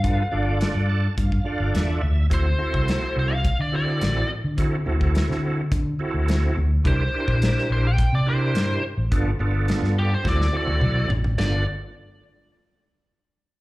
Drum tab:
CC |----------------|----------------|----------------|----------------|
HH |x---x---x---x---|x---x---x---x---|x---x---x---x---|x---x---x---x---|
SD |----o-------o---|----o-------o---|----oo------o---|----oo------o---|
T1 |----------------|----------------|----------------|----------------|
T2 |----------------|----------------|----------------|----------------|
FT |----------------|----------------|----------------|----------------|
BD |o-------oo------|o--o----o-------|o--o----o-------|o--o----o-------|

CC |----------------|x---------------|
HH |x---x-----------|----------------|
SD |----oo--oo------|o---------------|
T1 |-----------o----|----------------|
T2 |------------o---|----------------|
FT |--------------oo|----------------|
BD |o-------o-------|----------------|